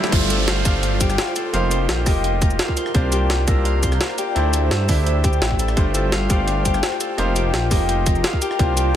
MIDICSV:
0, 0, Header, 1, 8, 480
1, 0, Start_track
1, 0, Key_signature, -2, "minor"
1, 0, Tempo, 352941
1, 169, Time_signature, 4, 2, 24, 8
1, 12187, End_track
2, 0, Start_track
2, 0, Title_t, "Ambient pad"
2, 0, Program_c, 0, 92
2, 0, Note_on_c, 0, 55, 75
2, 0, Note_on_c, 0, 64, 69
2, 148, Note_off_c, 0, 55, 0
2, 149, Note_off_c, 0, 64, 0
2, 169, Note_on_c, 0, 72, 69
2, 169, Note_on_c, 0, 79, 86
2, 170, Note_on_c, 0, 65, 78
2, 170, Note_on_c, 0, 69, 70
2, 2069, Note_off_c, 0, 72, 0
2, 2070, Note_off_c, 0, 69, 0
2, 2090, Note_on_c, 0, 70, 69
2, 2091, Note_on_c, 0, 75, 69
2, 3733, Note_off_c, 0, 79, 0
2, 3752, Note_off_c, 0, 70, 0
2, 3753, Note_off_c, 0, 75, 0
2, 3767, Note_on_c, 0, 72, 73
2, 3767, Note_on_c, 0, 74, 72
2, 3768, Note_on_c, 0, 82, 86
2, 5875, Note_off_c, 0, 65, 0
2, 5906, Note_off_c, 0, 82, 0
2, 5926, Note_on_c, 0, 64, 75
2, 5926, Note_on_c, 0, 79, 85
2, 7807, Note_off_c, 0, 74, 0
2, 7828, Note_off_c, 0, 64, 0
2, 7849, Note_on_c, 0, 65, 75
2, 7850, Note_on_c, 0, 81, 83
2, 9713, Note_off_c, 0, 72, 0
2, 9750, Note_off_c, 0, 81, 0
2, 9769, Note_on_c, 0, 75, 68
2, 9769, Note_on_c, 0, 82, 84
2, 11393, Note_off_c, 0, 79, 0
2, 11432, Note_off_c, 0, 75, 0
2, 11448, Note_on_c, 0, 74, 71
2, 11448, Note_on_c, 0, 84, 86
2, 12187, Note_off_c, 0, 65, 0
2, 12187, Note_off_c, 0, 74, 0
2, 12187, Note_off_c, 0, 82, 0
2, 12187, Note_off_c, 0, 84, 0
2, 12187, End_track
3, 0, Start_track
3, 0, Title_t, "Harp"
3, 0, Program_c, 1, 46
3, 0, Note_on_c, 1, 64, 111
3, 0, Note_on_c, 1, 69, 78
3, 168, Note_on_c, 1, 65, 104
3, 250, Note_off_c, 1, 64, 0
3, 403, Note_off_c, 1, 69, 0
3, 409, Note_on_c, 1, 69, 77
3, 648, Note_on_c, 1, 77, 100
3, 889, Note_on_c, 1, 72, 76
3, 1122, Note_off_c, 1, 77, 0
3, 1128, Note_on_c, 1, 77, 82
3, 1368, Note_on_c, 1, 67, 103
3, 1603, Note_off_c, 1, 65, 0
3, 1608, Note_on_c, 1, 65, 100
3, 1843, Note_off_c, 1, 69, 0
3, 1849, Note_on_c, 1, 69, 77
3, 2081, Note_off_c, 1, 77, 0
3, 2086, Note_on_c, 1, 77, 108
3, 2320, Note_off_c, 1, 72, 0
3, 2326, Note_on_c, 1, 72, 79
3, 2560, Note_off_c, 1, 77, 0
3, 2566, Note_on_c, 1, 77, 77
3, 2800, Note_off_c, 1, 67, 0
3, 2806, Note_on_c, 1, 67, 102
3, 3042, Note_off_c, 1, 65, 0
3, 3048, Note_on_c, 1, 65, 103
3, 3288, Note_on_c, 1, 70, 79
3, 3370, Note_off_c, 1, 69, 0
3, 3522, Note_off_c, 1, 77, 0
3, 3528, Note_on_c, 1, 77, 103
3, 3762, Note_off_c, 1, 72, 0
3, 3767, Note_on_c, 1, 72, 77
3, 4003, Note_off_c, 1, 77, 0
3, 4008, Note_on_c, 1, 77, 87
3, 4242, Note_off_c, 1, 67, 0
3, 4247, Note_on_c, 1, 67, 100
3, 4482, Note_off_c, 1, 65, 0
3, 4487, Note_on_c, 1, 65, 101
3, 4722, Note_off_c, 1, 70, 0
3, 4727, Note_on_c, 1, 70, 80
3, 4963, Note_off_c, 1, 77, 0
3, 4968, Note_on_c, 1, 77, 102
3, 5203, Note_off_c, 1, 72, 0
3, 5208, Note_on_c, 1, 72, 78
3, 5443, Note_off_c, 1, 77, 0
3, 5448, Note_on_c, 1, 77, 80
3, 5683, Note_off_c, 1, 67, 0
3, 5688, Note_on_c, 1, 67, 99
3, 5928, Note_on_c, 1, 64, 109
3, 6010, Note_off_c, 1, 65, 0
3, 6010, Note_off_c, 1, 77, 0
3, 6168, Note_on_c, 1, 69, 77
3, 6250, Note_off_c, 1, 70, 0
3, 6410, Note_on_c, 1, 76, 99
3, 6643, Note_off_c, 1, 72, 0
3, 6648, Note_on_c, 1, 72, 76
3, 6882, Note_off_c, 1, 76, 0
3, 6888, Note_on_c, 1, 76, 80
3, 7123, Note_off_c, 1, 67, 0
3, 7128, Note_on_c, 1, 67, 101
3, 7360, Note_off_c, 1, 64, 0
3, 7365, Note_on_c, 1, 64, 101
3, 7600, Note_off_c, 1, 69, 0
3, 7606, Note_on_c, 1, 69, 78
3, 7847, Note_on_c, 1, 65, 107
3, 7929, Note_off_c, 1, 64, 0
3, 7929, Note_off_c, 1, 76, 0
3, 8081, Note_off_c, 1, 69, 0
3, 8086, Note_on_c, 1, 69, 76
3, 8328, Note_on_c, 1, 77, 103
3, 8562, Note_off_c, 1, 67, 0
3, 8568, Note_on_c, 1, 67, 101
3, 8804, Note_off_c, 1, 77, 0
3, 8809, Note_on_c, 1, 77, 84
3, 9041, Note_off_c, 1, 67, 0
3, 9046, Note_on_c, 1, 67, 102
3, 9283, Note_off_c, 1, 65, 0
3, 9288, Note_on_c, 1, 65, 101
3, 9340, Note_off_c, 1, 72, 0
3, 9522, Note_off_c, 1, 69, 0
3, 9527, Note_on_c, 1, 69, 75
3, 9763, Note_off_c, 1, 77, 0
3, 9768, Note_on_c, 1, 77, 106
3, 10001, Note_off_c, 1, 67, 0
3, 10007, Note_on_c, 1, 67, 99
3, 10243, Note_off_c, 1, 77, 0
3, 10249, Note_on_c, 1, 77, 75
3, 10483, Note_off_c, 1, 67, 0
3, 10489, Note_on_c, 1, 67, 99
3, 10723, Note_off_c, 1, 65, 0
3, 10728, Note_on_c, 1, 65, 99
3, 10968, Note_on_c, 1, 70, 78
3, 11049, Note_off_c, 1, 69, 0
3, 11201, Note_off_c, 1, 77, 0
3, 11206, Note_on_c, 1, 77, 102
3, 11442, Note_off_c, 1, 67, 0
3, 11447, Note_on_c, 1, 67, 105
3, 11682, Note_off_c, 1, 77, 0
3, 11687, Note_on_c, 1, 77, 89
3, 11920, Note_off_c, 1, 67, 0
3, 11926, Note_on_c, 1, 67, 100
3, 12161, Note_off_c, 1, 65, 0
3, 12187, Note_off_c, 1, 67, 0
3, 12187, Note_off_c, 1, 70, 0
3, 12187, Note_off_c, 1, 77, 0
3, 12187, End_track
4, 0, Start_track
4, 0, Title_t, "Grand piano"
4, 0, Program_c, 2, 0
4, 0, Control_c, 2, 64, 127
4, 0, Note_on_c, 2, 57, 87
4, 0, Note_on_c, 2, 62, 77
4, 0, Note_on_c, 2, 64, 79
4, 0, Note_on_c, 2, 67, 78
4, 0, Note_on_c, 2, 72, 93
4, 136, Note_off_c, 2, 57, 0
4, 143, Note_off_c, 2, 62, 0
4, 150, Note_off_c, 2, 64, 0
4, 154, Note_off_c, 2, 67, 0
4, 157, Note_off_c, 2, 72, 0
4, 157, Note_on_c, 2, 57, 84
4, 164, Note_on_c, 2, 62, 76
4, 171, Note_on_c, 2, 65, 77
4, 178, Note_on_c, 2, 67, 76
4, 184, Note_on_c, 2, 72, 93
4, 186, Control_c, 2, 64, 0
4, 401, Control_c, 2, 64, 127
4, 854, Note_off_c, 2, 57, 0
4, 858, Note_off_c, 2, 62, 0
4, 861, Note_off_c, 2, 65, 0
4, 865, Note_off_c, 2, 67, 0
4, 868, Note_off_c, 2, 72, 0
4, 877, Note_on_c, 2, 57, 76
4, 883, Note_on_c, 2, 62, 70
4, 890, Note_on_c, 2, 65, 69
4, 897, Note_on_c, 2, 67, 67
4, 905, Note_on_c, 2, 77, 85
4, 2054, Note_off_c, 2, 57, 0
4, 2057, Note_off_c, 2, 62, 0
4, 2061, Note_off_c, 2, 65, 0
4, 2064, Note_off_c, 2, 67, 0
4, 2068, Note_off_c, 2, 77, 0
4, 2076, Note_on_c, 2, 58, 85
4, 2083, Note_on_c, 2, 63, 74
4, 2090, Note_on_c, 2, 65, 74
4, 2097, Note_on_c, 2, 67, 77
4, 2103, Note_on_c, 2, 72, 92
4, 2107, Control_c, 2, 64, 0
4, 2358, Control_c, 2, 64, 127
4, 2773, Note_off_c, 2, 58, 0
4, 2778, Note_off_c, 2, 63, 0
4, 2781, Note_off_c, 2, 65, 0
4, 2784, Note_off_c, 2, 67, 0
4, 2787, Note_off_c, 2, 72, 0
4, 2794, Note_on_c, 2, 58, 76
4, 2800, Note_on_c, 2, 63, 71
4, 2808, Note_on_c, 2, 65, 71
4, 2814, Note_on_c, 2, 67, 71
4, 2821, Note_on_c, 2, 75, 84
4, 3747, Note_off_c, 2, 58, 0
4, 3750, Note_off_c, 2, 63, 0
4, 3754, Note_off_c, 2, 65, 0
4, 3757, Note_off_c, 2, 67, 0
4, 3761, Note_off_c, 2, 75, 0
4, 3788, Control_c, 2, 64, 0
4, 3996, Note_on_c, 2, 58, 85
4, 4002, Note_on_c, 2, 62, 79
4, 4009, Note_on_c, 2, 65, 79
4, 4016, Note_on_c, 2, 67, 76
4, 4023, Note_on_c, 2, 72, 94
4, 4051, Control_c, 2, 64, 127
4, 4693, Note_off_c, 2, 58, 0
4, 4697, Note_off_c, 2, 62, 0
4, 4700, Note_off_c, 2, 65, 0
4, 4704, Note_off_c, 2, 67, 0
4, 4707, Note_off_c, 2, 72, 0
4, 4714, Note_on_c, 2, 58, 78
4, 4721, Note_on_c, 2, 62, 71
4, 4728, Note_on_c, 2, 65, 70
4, 4735, Note_on_c, 2, 67, 69
4, 4742, Note_on_c, 2, 88, 85
4, 5893, Note_off_c, 2, 58, 0
4, 5896, Note_off_c, 2, 62, 0
4, 5900, Note_off_c, 2, 65, 0
4, 5903, Note_off_c, 2, 67, 0
4, 5907, Note_off_c, 2, 88, 0
4, 5915, Note_on_c, 2, 57, 85
4, 5921, Note_on_c, 2, 62, 76
4, 5929, Note_on_c, 2, 64, 77
4, 5936, Note_on_c, 2, 67, 78
4, 5943, Note_on_c, 2, 72, 94
4, 5949, Control_c, 2, 64, 0
4, 6216, Control_c, 2, 64, 127
4, 6613, Note_off_c, 2, 57, 0
4, 6616, Note_off_c, 2, 62, 0
4, 6620, Note_off_c, 2, 64, 0
4, 6624, Note_off_c, 2, 67, 0
4, 6627, Note_off_c, 2, 72, 0
4, 6633, Note_on_c, 2, 57, 79
4, 6641, Note_on_c, 2, 62, 67
4, 6647, Note_on_c, 2, 64, 70
4, 6654, Note_on_c, 2, 67, 70
4, 6661, Note_on_c, 2, 76, 85
4, 7813, Note_off_c, 2, 57, 0
4, 7816, Note_off_c, 2, 62, 0
4, 7819, Note_off_c, 2, 64, 0
4, 7823, Note_off_c, 2, 67, 0
4, 7826, Note_off_c, 2, 76, 0
4, 7836, Note_on_c, 2, 57, 86
4, 7841, Note_on_c, 2, 62, 76
4, 7849, Note_on_c, 2, 65, 76
4, 7856, Note_on_c, 2, 67, 75
4, 7863, Note_on_c, 2, 72, 92
4, 7867, Control_c, 2, 64, 0
4, 8069, Control_c, 2, 64, 127
4, 8533, Note_off_c, 2, 57, 0
4, 8536, Note_off_c, 2, 62, 0
4, 8540, Note_off_c, 2, 65, 0
4, 8544, Note_off_c, 2, 67, 0
4, 8547, Note_off_c, 2, 72, 0
4, 8554, Note_on_c, 2, 57, 77
4, 8561, Note_on_c, 2, 62, 71
4, 8567, Note_on_c, 2, 65, 69
4, 8574, Note_on_c, 2, 67, 69
4, 8581, Note_on_c, 2, 77, 83
4, 9733, Note_off_c, 2, 57, 0
4, 9736, Note_off_c, 2, 62, 0
4, 9739, Note_off_c, 2, 65, 0
4, 9743, Note_off_c, 2, 67, 0
4, 9746, Note_off_c, 2, 77, 0
4, 9755, Note_on_c, 2, 58, 84
4, 9762, Note_on_c, 2, 63, 78
4, 9769, Note_on_c, 2, 65, 77
4, 9776, Note_on_c, 2, 67, 79
4, 9783, Note_on_c, 2, 72, 92
4, 9785, Control_c, 2, 64, 0
4, 9986, Control_c, 2, 64, 127
4, 10454, Note_off_c, 2, 58, 0
4, 10457, Note_off_c, 2, 63, 0
4, 10460, Note_off_c, 2, 65, 0
4, 10464, Note_off_c, 2, 67, 0
4, 10467, Note_off_c, 2, 72, 0
4, 10476, Note_on_c, 2, 58, 76
4, 10483, Note_on_c, 2, 63, 70
4, 10490, Note_on_c, 2, 65, 70
4, 10497, Note_on_c, 2, 67, 71
4, 10503, Note_on_c, 2, 75, 84
4, 11428, Note_off_c, 2, 58, 0
4, 11431, Note_off_c, 2, 63, 0
4, 11435, Note_off_c, 2, 65, 0
4, 11438, Note_off_c, 2, 67, 0
4, 11442, Note_off_c, 2, 75, 0
4, 11467, Control_c, 2, 64, 0
4, 11676, Note_on_c, 2, 58, 85
4, 11683, Note_on_c, 2, 62, 76
4, 11690, Note_on_c, 2, 65, 79
4, 11697, Note_on_c, 2, 67, 78
4, 11703, Note_on_c, 2, 72, 93
4, 11714, Control_c, 2, 64, 127
4, 12187, Note_off_c, 2, 58, 0
4, 12187, Note_off_c, 2, 62, 0
4, 12187, Note_off_c, 2, 65, 0
4, 12187, Note_off_c, 2, 67, 0
4, 12187, Note_off_c, 2, 72, 0
4, 12187, End_track
5, 0, Start_track
5, 0, Title_t, "Detuned saw bass"
5, 0, Program_c, 3, 39
5, 168, Note_on_c, 3, 31, 101
5, 869, Note_off_c, 3, 31, 0
5, 889, Note_on_c, 3, 31, 89
5, 1590, Note_off_c, 3, 31, 0
5, 2087, Note_on_c, 3, 29, 101
5, 2549, Note_off_c, 3, 29, 0
5, 2568, Note_on_c, 3, 34, 87
5, 2808, Note_on_c, 3, 29, 89
5, 2828, Note_off_c, 3, 34, 0
5, 3509, Note_off_c, 3, 29, 0
5, 4008, Note_on_c, 3, 36, 101
5, 4709, Note_off_c, 3, 36, 0
5, 4727, Note_on_c, 3, 36, 89
5, 5429, Note_off_c, 3, 36, 0
5, 5928, Note_on_c, 3, 38, 101
5, 6389, Note_off_c, 3, 38, 0
5, 6409, Note_on_c, 3, 43, 85
5, 6648, Note_on_c, 3, 38, 91
5, 6668, Note_off_c, 3, 43, 0
5, 7349, Note_off_c, 3, 38, 0
5, 7369, Note_on_c, 3, 33, 105
5, 7830, Note_off_c, 3, 33, 0
5, 7847, Note_on_c, 3, 31, 103
5, 8549, Note_off_c, 3, 31, 0
5, 8566, Note_on_c, 3, 31, 87
5, 9268, Note_off_c, 3, 31, 0
5, 9767, Note_on_c, 3, 29, 100
5, 10229, Note_off_c, 3, 29, 0
5, 10247, Note_on_c, 3, 34, 87
5, 10487, Note_on_c, 3, 29, 89
5, 10508, Note_off_c, 3, 34, 0
5, 11189, Note_off_c, 3, 29, 0
5, 11687, Note_on_c, 3, 36, 99
5, 12187, Note_off_c, 3, 36, 0
5, 12187, End_track
6, 0, Start_track
6, 0, Title_t, "Downlifter"
6, 0, Program_c, 4, 103
6, 170, Note_on_c, 4, 60, 75
6, 4009, Note_off_c, 4, 60, 0
6, 12187, End_track
7, 0, Start_track
7, 0, Title_t, "Riser"
7, 0, Program_c, 5, 103
7, 0, Note_on_c, 5, 60, 75
7, 168, Note_off_c, 5, 60, 0
7, 12187, End_track
8, 0, Start_track
8, 0, Title_t, "Drums"
8, 50, Note_on_c, 9, 38, 102
8, 168, Note_on_c, 9, 36, 122
8, 170, Note_on_c, 9, 42, 84
8, 170, Note_on_c, 9, 49, 105
8, 186, Note_off_c, 9, 38, 0
8, 304, Note_off_c, 9, 36, 0
8, 306, Note_off_c, 9, 42, 0
8, 306, Note_off_c, 9, 49, 0
8, 411, Note_on_c, 9, 42, 98
8, 411, Note_on_c, 9, 82, 60
8, 547, Note_off_c, 9, 42, 0
8, 547, Note_off_c, 9, 82, 0
8, 649, Note_on_c, 9, 38, 120
8, 649, Note_on_c, 9, 42, 85
8, 785, Note_off_c, 9, 38, 0
8, 785, Note_off_c, 9, 42, 0
8, 888, Note_on_c, 9, 36, 107
8, 889, Note_on_c, 9, 42, 98
8, 889, Note_on_c, 9, 82, 58
8, 1024, Note_off_c, 9, 36, 0
8, 1025, Note_off_c, 9, 42, 0
8, 1025, Note_off_c, 9, 82, 0
8, 1129, Note_on_c, 9, 42, 80
8, 1265, Note_off_c, 9, 42, 0
8, 1368, Note_on_c, 9, 36, 63
8, 1369, Note_on_c, 9, 42, 99
8, 1369, Note_on_c, 9, 82, 59
8, 1492, Note_off_c, 9, 82, 0
8, 1492, Note_on_c, 9, 37, 51
8, 1492, Note_on_c, 9, 82, 28
8, 1504, Note_off_c, 9, 36, 0
8, 1505, Note_off_c, 9, 42, 0
8, 1609, Note_on_c, 9, 38, 122
8, 1609, Note_on_c, 9, 42, 86
8, 1628, Note_off_c, 9, 37, 0
8, 1628, Note_off_c, 9, 82, 0
8, 1731, Note_on_c, 9, 37, 36
8, 1745, Note_off_c, 9, 38, 0
8, 1745, Note_off_c, 9, 42, 0
8, 1849, Note_on_c, 9, 42, 95
8, 1849, Note_on_c, 9, 82, 60
8, 1867, Note_off_c, 9, 37, 0
8, 1985, Note_off_c, 9, 42, 0
8, 1985, Note_off_c, 9, 82, 0
8, 2089, Note_on_c, 9, 42, 83
8, 2225, Note_off_c, 9, 42, 0
8, 2329, Note_on_c, 9, 42, 94
8, 2329, Note_on_c, 9, 82, 58
8, 2465, Note_off_c, 9, 42, 0
8, 2465, Note_off_c, 9, 82, 0
8, 2569, Note_on_c, 9, 38, 122
8, 2569, Note_on_c, 9, 42, 80
8, 2705, Note_off_c, 9, 38, 0
8, 2705, Note_off_c, 9, 42, 0
8, 2807, Note_on_c, 9, 36, 112
8, 2808, Note_on_c, 9, 37, 35
8, 2808, Note_on_c, 9, 46, 77
8, 2808, Note_on_c, 9, 82, 57
8, 2943, Note_off_c, 9, 36, 0
8, 2944, Note_off_c, 9, 37, 0
8, 2944, Note_off_c, 9, 46, 0
8, 2944, Note_off_c, 9, 82, 0
8, 3048, Note_on_c, 9, 42, 79
8, 3184, Note_off_c, 9, 42, 0
8, 3287, Note_on_c, 9, 36, 116
8, 3288, Note_on_c, 9, 42, 93
8, 3288, Note_on_c, 9, 82, 58
8, 3408, Note_off_c, 9, 82, 0
8, 3408, Note_on_c, 9, 82, 27
8, 3423, Note_off_c, 9, 36, 0
8, 3424, Note_off_c, 9, 42, 0
8, 3525, Note_on_c, 9, 38, 124
8, 3525, Note_on_c, 9, 42, 81
8, 3544, Note_off_c, 9, 82, 0
8, 3649, Note_on_c, 9, 36, 65
8, 3661, Note_off_c, 9, 38, 0
8, 3661, Note_off_c, 9, 42, 0
8, 3766, Note_on_c, 9, 42, 94
8, 3766, Note_on_c, 9, 82, 55
8, 3785, Note_off_c, 9, 36, 0
8, 3889, Note_on_c, 9, 37, 50
8, 3902, Note_off_c, 9, 42, 0
8, 3902, Note_off_c, 9, 82, 0
8, 4005, Note_on_c, 9, 42, 79
8, 4007, Note_on_c, 9, 36, 125
8, 4025, Note_off_c, 9, 37, 0
8, 4141, Note_off_c, 9, 42, 0
8, 4143, Note_off_c, 9, 36, 0
8, 4246, Note_on_c, 9, 42, 91
8, 4246, Note_on_c, 9, 82, 58
8, 4382, Note_off_c, 9, 42, 0
8, 4382, Note_off_c, 9, 82, 0
8, 4486, Note_on_c, 9, 38, 127
8, 4486, Note_on_c, 9, 42, 77
8, 4622, Note_off_c, 9, 38, 0
8, 4622, Note_off_c, 9, 42, 0
8, 4727, Note_on_c, 9, 36, 117
8, 4727, Note_on_c, 9, 42, 91
8, 4727, Note_on_c, 9, 82, 56
8, 4863, Note_off_c, 9, 36, 0
8, 4863, Note_off_c, 9, 42, 0
8, 4863, Note_off_c, 9, 82, 0
8, 4967, Note_on_c, 9, 42, 76
8, 5103, Note_off_c, 9, 42, 0
8, 5207, Note_on_c, 9, 36, 65
8, 5209, Note_on_c, 9, 42, 91
8, 5209, Note_on_c, 9, 82, 58
8, 5333, Note_off_c, 9, 82, 0
8, 5333, Note_on_c, 9, 37, 49
8, 5333, Note_on_c, 9, 82, 26
8, 5343, Note_off_c, 9, 36, 0
8, 5345, Note_off_c, 9, 42, 0
8, 5448, Note_on_c, 9, 38, 127
8, 5448, Note_on_c, 9, 42, 78
8, 5469, Note_off_c, 9, 37, 0
8, 5469, Note_off_c, 9, 82, 0
8, 5569, Note_on_c, 9, 37, 35
8, 5584, Note_off_c, 9, 38, 0
8, 5584, Note_off_c, 9, 42, 0
8, 5688, Note_on_c, 9, 42, 90
8, 5688, Note_on_c, 9, 82, 56
8, 5705, Note_off_c, 9, 37, 0
8, 5824, Note_off_c, 9, 42, 0
8, 5824, Note_off_c, 9, 82, 0
8, 5927, Note_on_c, 9, 42, 78
8, 6063, Note_off_c, 9, 42, 0
8, 6168, Note_on_c, 9, 42, 88
8, 6168, Note_on_c, 9, 82, 56
8, 6304, Note_off_c, 9, 42, 0
8, 6304, Note_off_c, 9, 82, 0
8, 6408, Note_on_c, 9, 38, 127
8, 6408, Note_on_c, 9, 42, 75
8, 6544, Note_off_c, 9, 38, 0
8, 6544, Note_off_c, 9, 42, 0
8, 6647, Note_on_c, 9, 36, 113
8, 6648, Note_on_c, 9, 37, 33
8, 6648, Note_on_c, 9, 46, 81
8, 6648, Note_on_c, 9, 82, 58
8, 6783, Note_off_c, 9, 36, 0
8, 6784, Note_off_c, 9, 37, 0
8, 6784, Note_off_c, 9, 46, 0
8, 6784, Note_off_c, 9, 82, 0
8, 6888, Note_on_c, 9, 42, 74
8, 7024, Note_off_c, 9, 42, 0
8, 7127, Note_on_c, 9, 36, 114
8, 7129, Note_on_c, 9, 42, 87
8, 7129, Note_on_c, 9, 82, 57
8, 7250, Note_off_c, 9, 82, 0
8, 7250, Note_on_c, 9, 82, 27
8, 7263, Note_off_c, 9, 36, 0
8, 7265, Note_off_c, 9, 42, 0
8, 7368, Note_on_c, 9, 38, 123
8, 7368, Note_on_c, 9, 42, 75
8, 7386, Note_off_c, 9, 82, 0
8, 7488, Note_on_c, 9, 36, 64
8, 7504, Note_off_c, 9, 38, 0
8, 7504, Note_off_c, 9, 42, 0
8, 7608, Note_on_c, 9, 42, 86
8, 7608, Note_on_c, 9, 82, 56
8, 7624, Note_off_c, 9, 36, 0
8, 7730, Note_off_c, 9, 82, 0
8, 7730, Note_on_c, 9, 37, 47
8, 7730, Note_on_c, 9, 82, 27
8, 7744, Note_off_c, 9, 42, 0
8, 7846, Note_on_c, 9, 36, 121
8, 7846, Note_on_c, 9, 42, 76
8, 7866, Note_off_c, 9, 37, 0
8, 7866, Note_off_c, 9, 82, 0
8, 7982, Note_off_c, 9, 36, 0
8, 7982, Note_off_c, 9, 42, 0
8, 8087, Note_on_c, 9, 42, 89
8, 8087, Note_on_c, 9, 82, 60
8, 8223, Note_off_c, 9, 42, 0
8, 8223, Note_off_c, 9, 82, 0
8, 8327, Note_on_c, 9, 38, 119
8, 8327, Note_on_c, 9, 42, 76
8, 8463, Note_off_c, 9, 38, 0
8, 8463, Note_off_c, 9, 42, 0
8, 8566, Note_on_c, 9, 36, 108
8, 8569, Note_on_c, 9, 42, 86
8, 8569, Note_on_c, 9, 82, 60
8, 8702, Note_off_c, 9, 36, 0
8, 8705, Note_off_c, 9, 42, 0
8, 8705, Note_off_c, 9, 82, 0
8, 8807, Note_on_c, 9, 42, 76
8, 8943, Note_off_c, 9, 42, 0
8, 9046, Note_on_c, 9, 36, 64
8, 9049, Note_on_c, 9, 42, 91
8, 9049, Note_on_c, 9, 82, 60
8, 9171, Note_off_c, 9, 82, 0
8, 9171, Note_on_c, 9, 37, 45
8, 9171, Note_on_c, 9, 82, 28
8, 9182, Note_off_c, 9, 36, 0
8, 9185, Note_off_c, 9, 42, 0
8, 9288, Note_on_c, 9, 38, 124
8, 9288, Note_on_c, 9, 42, 76
8, 9307, Note_off_c, 9, 37, 0
8, 9307, Note_off_c, 9, 82, 0
8, 9411, Note_on_c, 9, 37, 33
8, 9424, Note_off_c, 9, 38, 0
8, 9424, Note_off_c, 9, 42, 0
8, 9528, Note_on_c, 9, 42, 86
8, 9528, Note_on_c, 9, 82, 59
8, 9547, Note_off_c, 9, 37, 0
8, 9664, Note_off_c, 9, 42, 0
8, 9664, Note_off_c, 9, 82, 0
8, 9768, Note_on_c, 9, 42, 81
8, 9904, Note_off_c, 9, 42, 0
8, 10009, Note_on_c, 9, 42, 91
8, 10009, Note_on_c, 9, 82, 63
8, 10145, Note_off_c, 9, 42, 0
8, 10145, Note_off_c, 9, 82, 0
8, 10250, Note_on_c, 9, 38, 114
8, 10250, Note_on_c, 9, 42, 81
8, 10386, Note_off_c, 9, 38, 0
8, 10386, Note_off_c, 9, 42, 0
8, 10488, Note_on_c, 9, 36, 102
8, 10490, Note_on_c, 9, 37, 32
8, 10490, Note_on_c, 9, 46, 79
8, 10490, Note_on_c, 9, 82, 61
8, 10624, Note_off_c, 9, 36, 0
8, 10626, Note_off_c, 9, 37, 0
8, 10626, Note_off_c, 9, 46, 0
8, 10626, Note_off_c, 9, 82, 0
8, 10729, Note_on_c, 9, 42, 77
8, 10865, Note_off_c, 9, 42, 0
8, 10967, Note_on_c, 9, 36, 106
8, 10967, Note_on_c, 9, 42, 91
8, 10967, Note_on_c, 9, 82, 62
8, 11091, Note_off_c, 9, 82, 0
8, 11091, Note_on_c, 9, 82, 29
8, 11103, Note_off_c, 9, 36, 0
8, 11103, Note_off_c, 9, 42, 0
8, 11207, Note_on_c, 9, 38, 117
8, 11207, Note_on_c, 9, 42, 83
8, 11227, Note_off_c, 9, 82, 0
8, 11329, Note_on_c, 9, 36, 60
8, 11343, Note_off_c, 9, 38, 0
8, 11343, Note_off_c, 9, 42, 0
8, 11449, Note_on_c, 9, 42, 88
8, 11449, Note_on_c, 9, 82, 59
8, 11465, Note_off_c, 9, 36, 0
8, 11572, Note_on_c, 9, 37, 46
8, 11585, Note_off_c, 9, 42, 0
8, 11585, Note_off_c, 9, 82, 0
8, 11687, Note_on_c, 9, 36, 116
8, 11689, Note_on_c, 9, 42, 84
8, 11708, Note_off_c, 9, 37, 0
8, 11823, Note_off_c, 9, 36, 0
8, 11825, Note_off_c, 9, 42, 0
8, 11930, Note_on_c, 9, 42, 100
8, 11930, Note_on_c, 9, 82, 63
8, 12066, Note_off_c, 9, 42, 0
8, 12066, Note_off_c, 9, 82, 0
8, 12187, End_track
0, 0, End_of_file